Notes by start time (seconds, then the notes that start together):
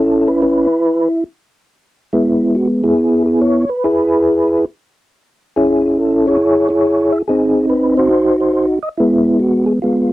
Already playing: C#4 E4 A4
0.28 B4
0.42 E4 B4
2.13 G#3 B3 E4
2.55 F#4
2.83 B3 E4 G#4
3.26 G#4
3.41 C#5
3.69 B4
3.84 E4 G#4 B4
5.56 C#4 E4 G#4
5.98 A4
6.27 E4 G#4 C#5
6.69 E4 G#4 C#5
7.12 E5
7.28 C4 D#4 G#4
7.69 B4
7.97 D#4 F#4 C5
8.40 C5
8.53 C5
8.83 D#5
8.98 G#3 B3 E4
9.40 F#4
9.66 G#4
9.82 G#3 B3 F4